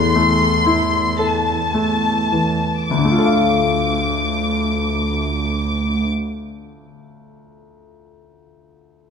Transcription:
0, 0, Header, 1, 5, 480
1, 0, Start_track
1, 0, Key_signature, -1, "minor"
1, 0, Tempo, 1008403
1, 312, Tempo, 1081081
1, 792, Tempo, 1145038
1, 1280, Time_signature, 6, 3, 24, 8
1, 3879, End_track
2, 0, Start_track
2, 0, Title_t, "Violin section"
2, 0, Program_c, 0, 48
2, 0, Note_on_c, 0, 84, 60
2, 544, Note_off_c, 0, 84, 0
2, 553, Note_on_c, 0, 81, 43
2, 1281, Note_on_c, 0, 86, 30
2, 1283, Note_off_c, 0, 81, 0
2, 2611, Note_off_c, 0, 86, 0
2, 3879, End_track
3, 0, Start_track
3, 0, Title_t, "Harp"
3, 0, Program_c, 1, 46
3, 0, Note_on_c, 1, 52, 36
3, 0, Note_on_c, 1, 57, 28
3, 0, Note_on_c, 1, 64, 30
3, 0, Note_on_c, 1, 69, 26
3, 1262, Note_off_c, 1, 52, 0
3, 1278, Note_on_c, 1, 50, 24
3, 1280, Note_off_c, 1, 64, 0
3, 1303, Note_off_c, 1, 57, 0
3, 1308, Note_on_c, 1, 57, 24
3, 1337, Note_on_c, 1, 62, 24
3, 1366, Note_on_c, 1, 65, 23
3, 1391, Note_off_c, 1, 69, 0
3, 1396, Note_on_c, 1, 69, 25
3, 1426, Note_on_c, 1, 77, 23
3, 2666, Note_off_c, 1, 62, 0
3, 2695, Note_off_c, 1, 65, 0
3, 2703, Note_off_c, 1, 57, 0
3, 2725, Note_off_c, 1, 69, 0
3, 2755, Note_off_c, 1, 77, 0
3, 2913, Note_off_c, 1, 50, 0
3, 3879, End_track
4, 0, Start_track
4, 0, Title_t, "Grand piano"
4, 0, Program_c, 2, 0
4, 0, Control_c, 2, 64, 127
4, 0, Note_on_c, 2, 40, 34
4, 74, Note_on_c, 2, 57, 24
4, 315, Note_on_c, 2, 64, 29
4, 452, Note_off_c, 2, 57, 0
4, 549, Note_on_c, 2, 69, 19
4, 694, Note_off_c, 2, 64, 0
4, 795, Note_on_c, 2, 57, 21
4, 938, Note_off_c, 2, 69, 0
4, 1038, Note_on_c, 2, 52, 17
4, 1184, Note_off_c, 2, 57, 0
4, 1265, Note_off_c, 2, 40, 0
4, 1281, Note_off_c, 2, 52, 0
4, 1282, Note_on_c, 2, 38, 20
4, 1288, Control_c, 2, 64, 0
4, 1313, Note_on_c, 2, 50, 22
4, 1341, Note_on_c, 2, 57, 22
4, 1371, Note_on_c, 2, 65, 22
4, 1388, Control_c, 2, 64, 127
4, 1399, Note_on_c, 2, 69, 19
4, 1428, Note_on_c, 2, 77, 21
4, 2612, Note_off_c, 2, 38, 0
4, 2643, Note_off_c, 2, 50, 0
4, 2671, Note_off_c, 2, 57, 0
4, 2701, Note_off_c, 2, 65, 0
4, 2729, Note_off_c, 2, 69, 0
4, 2758, Note_off_c, 2, 77, 0
4, 3879, End_track
5, 0, Start_track
5, 0, Title_t, "Cello section"
5, 0, Program_c, 3, 48
5, 0, Note_on_c, 3, 40, 38
5, 1157, Note_off_c, 3, 40, 0
5, 1280, Note_on_c, 3, 38, 30
5, 2610, Note_off_c, 3, 38, 0
5, 3879, End_track
0, 0, End_of_file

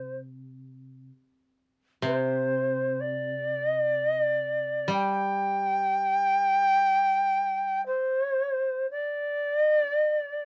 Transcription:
0, 0, Header, 1, 3, 480
1, 0, Start_track
1, 0, Tempo, 947867
1, 560, Time_signature, 4, 2, 24, 8
1, 2965, Tempo, 985222
1, 3445, Tempo, 1032702
1, 4405, Tempo, 985222
1, 5158, End_track
2, 0, Start_track
2, 0, Title_t, "Shakuhachi"
2, 0, Program_c, 0, 77
2, 0, Note_on_c, 0, 72, 85
2, 86, Note_off_c, 0, 72, 0
2, 1041, Note_on_c, 0, 72, 80
2, 1522, Note_on_c, 0, 74, 82
2, 1529, Note_off_c, 0, 72, 0
2, 1861, Note_off_c, 0, 74, 0
2, 1861, Note_on_c, 0, 75, 82
2, 1952, Note_off_c, 0, 75, 0
2, 1952, Note_on_c, 0, 74, 82
2, 2053, Note_off_c, 0, 74, 0
2, 2053, Note_on_c, 0, 75, 82
2, 2145, Note_off_c, 0, 75, 0
2, 2145, Note_on_c, 0, 74, 82
2, 2481, Note_off_c, 0, 74, 0
2, 2493, Note_on_c, 0, 79, 95
2, 3914, Note_off_c, 0, 79, 0
2, 3921, Note_on_c, 0, 72, 75
2, 4386, Note_off_c, 0, 72, 0
2, 4406, Note_on_c, 0, 74, 87
2, 4742, Note_off_c, 0, 74, 0
2, 4742, Note_on_c, 0, 75, 87
2, 4830, Note_off_c, 0, 75, 0
2, 4830, Note_on_c, 0, 74, 87
2, 4928, Note_off_c, 0, 74, 0
2, 4928, Note_on_c, 0, 75, 87
2, 5020, Note_off_c, 0, 75, 0
2, 5020, Note_on_c, 0, 74, 87
2, 5158, Note_off_c, 0, 74, 0
2, 5158, End_track
3, 0, Start_track
3, 0, Title_t, "Koto"
3, 0, Program_c, 1, 107
3, 0, Note_on_c, 1, 48, 54
3, 553, Note_off_c, 1, 48, 0
3, 1024, Note_on_c, 1, 48, 67
3, 2470, Note_on_c, 1, 55, 60
3, 2472, Note_off_c, 1, 48, 0
3, 3922, Note_off_c, 1, 55, 0
3, 5158, End_track
0, 0, End_of_file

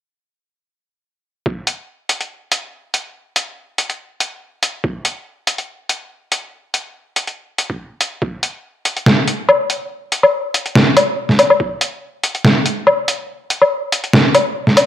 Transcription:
0, 0, Header, 1, 2, 480
1, 0, Start_track
1, 0, Tempo, 422535
1, 1657, Time_signature, 4, 2, 24, 8
1, 16882, End_track
2, 0, Start_track
2, 0, Title_t, "Drums"
2, 1658, Note_on_c, 9, 36, 112
2, 1771, Note_off_c, 9, 36, 0
2, 1898, Note_on_c, 9, 42, 77
2, 2011, Note_off_c, 9, 42, 0
2, 2377, Note_on_c, 9, 42, 76
2, 2491, Note_off_c, 9, 42, 0
2, 2506, Note_on_c, 9, 42, 35
2, 2619, Note_off_c, 9, 42, 0
2, 2858, Note_on_c, 9, 42, 77
2, 2972, Note_off_c, 9, 42, 0
2, 3338, Note_on_c, 9, 42, 76
2, 3452, Note_off_c, 9, 42, 0
2, 3817, Note_on_c, 9, 42, 76
2, 3930, Note_off_c, 9, 42, 0
2, 4297, Note_on_c, 9, 42, 72
2, 4411, Note_off_c, 9, 42, 0
2, 4426, Note_on_c, 9, 42, 34
2, 4540, Note_off_c, 9, 42, 0
2, 4776, Note_on_c, 9, 42, 76
2, 4890, Note_off_c, 9, 42, 0
2, 5256, Note_on_c, 9, 42, 75
2, 5369, Note_off_c, 9, 42, 0
2, 5497, Note_on_c, 9, 36, 121
2, 5611, Note_off_c, 9, 36, 0
2, 5736, Note_on_c, 9, 42, 74
2, 5849, Note_off_c, 9, 42, 0
2, 6216, Note_on_c, 9, 42, 72
2, 6330, Note_off_c, 9, 42, 0
2, 6343, Note_on_c, 9, 42, 34
2, 6457, Note_off_c, 9, 42, 0
2, 6696, Note_on_c, 9, 42, 76
2, 6809, Note_off_c, 9, 42, 0
2, 7176, Note_on_c, 9, 42, 73
2, 7290, Note_off_c, 9, 42, 0
2, 7656, Note_on_c, 9, 42, 72
2, 7769, Note_off_c, 9, 42, 0
2, 8136, Note_on_c, 9, 42, 69
2, 8250, Note_off_c, 9, 42, 0
2, 8263, Note_on_c, 9, 42, 32
2, 8377, Note_off_c, 9, 42, 0
2, 8615, Note_on_c, 9, 42, 73
2, 8729, Note_off_c, 9, 42, 0
2, 8744, Note_on_c, 9, 36, 60
2, 8858, Note_off_c, 9, 36, 0
2, 9095, Note_on_c, 9, 42, 71
2, 9209, Note_off_c, 9, 42, 0
2, 9336, Note_on_c, 9, 36, 112
2, 9450, Note_off_c, 9, 36, 0
2, 9576, Note_on_c, 9, 42, 70
2, 9689, Note_off_c, 9, 42, 0
2, 10056, Note_on_c, 9, 42, 71
2, 10170, Note_off_c, 9, 42, 0
2, 10185, Note_on_c, 9, 42, 33
2, 10296, Note_on_c, 9, 38, 111
2, 10299, Note_off_c, 9, 42, 0
2, 10410, Note_off_c, 9, 38, 0
2, 10537, Note_on_c, 9, 42, 74
2, 10650, Note_off_c, 9, 42, 0
2, 10776, Note_on_c, 9, 77, 79
2, 10890, Note_off_c, 9, 77, 0
2, 11017, Note_on_c, 9, 42, 73
2, 11130, Note_off_c, 9, 42, 0
2, 11496, Note_on_c, 9, 42, 74
2, 11610, Note_off_c, 9, 42, 0
2, 11624, Note_on_c, 9, 77, 60
2, 11738, Note_off_c, 9, 77, 0
2, 11977, Note_on_c, 9, 42, 74
2, 12091, Note_off_c, 9, 42, 0
2, 12106, Note_on_c, 9, 42, 34
2, 12217, Note_on_c, 9, 38, 107
2, 12220, Note_off_c, 9, 42, 0
2, 12331, Note_off_c, 9, 38, 0
2, 12458, Note_on_c, 9, 42, 78
2, 12458, Note_on_c, 9, 77, 78
2, 12572, Note_off_c, 9, 42, 0
2, 12572, Note_off_c, 9, 77, 0
2, 12826, Note_on_c, 9, 38, 35
2, 12938, Note_on_c, 9, 42, 77
2, 12938, Note_on_c, 9, 77, 59
2, 12940, Note_off_c, 9, 38, 0
2, 13051, Note_off_c, 9, 42, 0
2, 13051, Note_off_c, 9, 77, 0
2, 13066, Note_on_c, 9, 77, 60
2, 13177, Note_on_c, 9, 36, 109
2, 13180, Note_off_c, 9, 77, 0
2, 13291, Note_off_c, 9, 36, 0
2, 13417, Note_on_c, 9, 42, 78
2, 13531, Note_off_c, 9, 42, 0
2, 13899, Note_on_c, 9, 42, 77
2, 14013, Note_off_c, 9, 42, 0
2, 14027, Note_on_c, 9, 42, 35
2, 14138, Note_on_c, 9, 38, 107
2, 14140, Note_off_c, 9, 42, 0
2, 14252, Note_off_c, 9, 38, 0
2, 14378, Note_on_c, 9, 42, 80
2, 14491, Note_off_c, 9, 42, 0
2, 14618, Note_on_c, 9, 77, 73
2, 14732, Note_off_c, 9, 77, 0
2, 14859, Note_on_c, 9, 42, 79
2, 14973, Note_off_c, 9, 42, 0
2, 15339, Note_on_c, 9, 42, 79
2, 15452, Note_off_c, 9, 42, 0
2, 15467, Note_on_c, 9, 77, 57
2, 15580, Note_off_c, 9, 77, 0
2, 15818, Note_on_c, 9, 42, 78
2, 15931, Note_off_c, 9, 42, 0
2, 15946, Note_on_c, 9, 42, 37
2, 16057, Note_on_c, 9, 38, 110
2, 16060, Note_off_c, 9, 42, 0
2, 16170, Note_off_c, 9, 38, 0
2, 16297, Note_on_c, 9, 42, 84
2, 16297, Note_on_c, 9, 77, 72
2, 16410, Note_off_c, 9, 42, 0
2, 16410, Note_off_c, 9, 77, 0
2, 16665, Note_on_c, 9, 38, 35
2, 16778, Note_on_c, 9, 42, 82
2, 16778, Note_on_c, 9, 77, 56
2, 16779, Note_off_c, 9, 38, 0
2, 16882, Note_off_c, 9, 42, 0
2, 16882, Note_off_c, 9, 77, 0
2, 16882, End_track
0, 0, End_of_file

